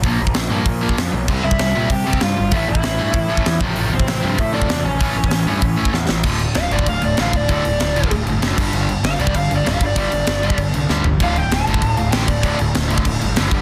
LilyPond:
<<
  \new Staff \with { instrumentName = "Lead electric guitar" } { \time 4/4 \key d \minor \tempo 4 = 193 r1 | r8 <e' e''>4. <g' g''>8 <g' g''>8 <f' f''>4 | <e' e''>8 <e' e''>2. r8 | r8 <c' c''>4. <e' e''>8 <d' d''>4 <cis' cis''>8~ |
<cis' cis''>2. r4 | r4 f''8 d''8 f''8 d''8 f''8 d''8 | d''2 r2 | r4 f''8 d''8 f''8 d''8 f''8 d''8 |
d''2 r2 | f''8 g''8 a''4. f''8 g''8 d''8~ | d''8 r2. r8 | }
  \new Staff \with { instrumentName = "Distorted electric guitar" } { \clef bass \time 4/4 \key d \minor <bes, f bes>8 <bes, f>8 <bes, f>8 <bes, f bes>8 <bes, f>8 <bes, f bes>8 <bes, f>8 <bes, f>8 | <c g c'>8 <c g>8 <c g>8 <c g c'>8 <c g>8 <c g c'>8 <c g>8 <c g>8 | <a, e a>8 <a, e>8 <a, e>8 <a, e a>8 <a, e>8 <a, e a>8 <a, e>8 <f, c f>8 | <f, c f>8 <f, c>8 <f, c>8 <f, c f>8 <f, c>8 <f, c f>8 <f, c>8 <f, c>8 |
<a, e a>8 <a, e>8 <a, e>8 <a, e a>8 <a, e>8 <a, e a>8 <a, e>8 <a, e>8 | <d, a, d>8 <d, a,>8 <d, a,>8 <d, a, d>8 <d, a,>8 <d, a,>8 <d, a, d>8 <d, a,>8 | <d, a, d>8 <d, a,>8 <d, a,>8 <d, a, d>8 <d, a,>8 <d, a,>8 <d, a, d>8 <g, d g>8 | <g, d g>8 <g, d>8 <g, d>8 <g, d g>8 <g, d>8 <g, d>8 <g, d g>8 <g, d>8 |
<g, d g>8 <g, d>8 <g, d>8 <g, d g>8 <g, d>8 <g, d>8 <g, d g>8 <g, d>8 | <d, a, d>8 <d, a,>8 <d, a,>8 <d, a, d>8 <d, a,>8 <d, a,>8 <d, a, d>8 <d, a,>8 | <d, a, d>8 <d, a,>8 <d, a,>8 <d, a, d>8 <d, a,>8 <d, a,>8 <d, a, d>8 <g, d g>8 | }
  \new Staff \with { instrumentName = "Overdriven electric guitar" } { \clef bass \time 4/4 \key d \minor <bes, f bes>8 <bes, f>8 <bes, f>8 <bes, f bes>8 <bes, f>8 <bes, f bes>8 <bes, f>8 <bes, f>8 | <c g c'>8 <c g>8 <c g>8 <c g c'>8 <c g>8 <c g c'>8 <c g>8 <c g>8 | <a, e a>8 <a, e>8 <a, e>8 <a, e a>8 <a, e>8 <a, e a>8 <a, e>8 <f, c f>8 | <f, c f>8 <f, c>8 <f, c>8 <f, c f>8 <f, c>8 <f, c f>8 <f, c>8 <f, c>8 |
<a, e a>8 <a, e>8 <a, e>8 <a, e a>8 <a, e>8 <a, e a>8 <a, e>8 <a, e>8 | <d, a, d>8 <d, a,>8 <d, a,>8 <d, a, d>8 <d, a,>8 <d, a,>8 <d, a, d>8 <d, a,>8 | <d, a, d>8 <d, a,>8 <d, a,>8 <d, a, d>8 <d, a,>8 <d, a,>8 <d, a, d>8 <g, d g>8 | <g, d g>8 <g, d>8 <g, d>8 <g, d g>8 <g, d>8 <g, d>8 <g, d g>8 <g, d>8 |
<g, d g>8 <g, d>8 <g, d>8 <g, d g>8 <g, d>8 <g, d>8 <g, d g>8 <g, d>8 | <d, a, d>8 <d, a,>8 <d, a,>8 <d, a, d>8 <d, a,>8 <d, a,>8 <d, a, d>8 <d, a,>8 | <d, a, d>8 <d, a,>8 <d, a,>8 <d, a, d>8 <d, a,>8 <d, a,>8 <d, a, d>8 <g, d g>8 | }
  \new Staff \with { instrumentName = "Picked electric bass" } { \clef bass \time 4/4 \key d \minor bes,,8 bes,,8 bes,,8 g,8 bes,4 f,8 b,,8 | c,8 c,8 c,8 bes,8 c4 g,8 g,,8 | a,,8 a,,8 a,,8 g,8 a,4 e,8 a,,8 | a,,8 a,,8 a,,8 g,8 a,4 e,8 a,,8 |
a,,8 a,,8 a,,8 g,8 a,4 e,8 a,,8 | d,,4 d,,8 g,,8 d,,8 d,,8 a,,8 d,,8 | d,,8 d,,8 d,,4 d,,8 g,,8 fis,,8 g,,8 | g,,4 g,,8 c,8 g,,8 g,,8 d,,8 g,,8 |
g,,8 g,,8 g,,4 g,,8 c,8 d,8 g,,8 | d,,4 d,,8 g,,8 d,,8 d,,8 a,,8 d,,8 | d,,8 d,,8 d,,4 d,,8 g,,8 fis,,8 g,,8 | }
  \new DrumStaff \with { instrumentName = "Drums" } \drummode { \time 4/4 <hho bd>8. bd16 <hho sn>4 <hho bd>8. bd16 <hho sn>4 | <cymc bd>8. bd16 <hho sn>4 <hho bd>8. bd16 <hho sn>4 | <hho bd>8. bd16 <hho sn>4 <hho bd>8. bd16 <hho sn>8 bd8 | hho8. bd16 <hho sn>4 <hho bd>8. bd16 <hho sn>4 |
<hho bd>8. bd16 <hho sn>4 <hho bd>8. bd16 sn8 sn8 | <cymc bd>8 cymc8 <cymc sn>8 cymc16 bd16 <cymc bd>8 cymc8 <cymc sn>8 <cymc bd>8 | <cymc bd>8 cymc8 <cymc sn>8 cymc16 bd16 <cymc bd>8 cymc8 <cymc sn>8 <cymc bd>8 | cymc8 cymc8 <cymc sn>8 cymc16 bd16 <cymc bd>8 cymc8 <cymc sn>8 <cymc bd>8 |
<cymc bd>8 cymc8 <cymc sn>8 cymc16 bd16 <cymc bd>8 cymc8 sn8 tomfh8 | <cymc bd>8 cymc8 <cymc sn>8 cymc16 bd16 <cymc bd>8 cymc8 <cymc sn>8 <cymc bd>8 | <cymc bd>8 cymc8 <cymc sn>8 cymc16 bd16 <cymc bd>8 cymc8 <cymc sn>8 <cymc bd>8 | }
>>